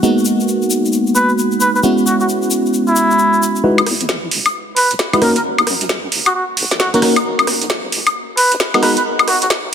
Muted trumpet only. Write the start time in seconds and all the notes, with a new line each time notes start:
1.16 B4
1.61 B4
1.75 B4
2.06 F#4
2.21 F#4
2.88 E4
4.77 B4
5.22 A#4
5.36 A#4
6.26 F#4
6.35 F#4
6.80 F#4
6.94 F#4
8.37 B4
8.83 B4
8.97 B4
9.28 F#4
9.42 F#4